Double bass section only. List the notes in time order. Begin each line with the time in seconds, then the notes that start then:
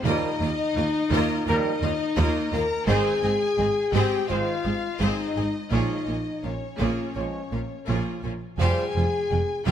0.05 D#2
0.41 D#2
0.76 D#2
1.11 D#2
1.47 D#2
1.83 D#2
2.17 D#2
2.53 D#2
2.88 G#1
3.23 G#1
3.59 G#1
3.94 G#1
4.30 G#1
4.65 G#1
5.01 G#1
5.36 G#1
5.72 A#1
6.07 A#1
6.44 A#1
6.81 A#1
7.17 A#1
7.53 A#1
7.88 A#1
8.25 A#1
8.60 F1
8.96 F1
9.32 F1
9.67 F1